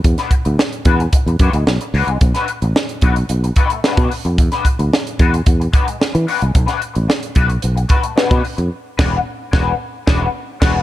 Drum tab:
CC |----------------|----------------|----------------|----------------|
HH |xxxx-xxxxxxx-xox|xxxx-xxxxxxx-xox|xxxx-xxxxxxx-xox|xxxx-xxxxxxx-xox|
SD |-o--o-------o---|-o--o-------o---|-o--o-------o---|-o--o-------o---|
BD |o-o---o-o-o-----|o-----o---o--o--|o-o---o-o-o-----|o-----o---o--o--|

CC |--x-----------x-|
HH |----------------|
SD |--o---o---o---o-|
BD |--o---o---o---o-|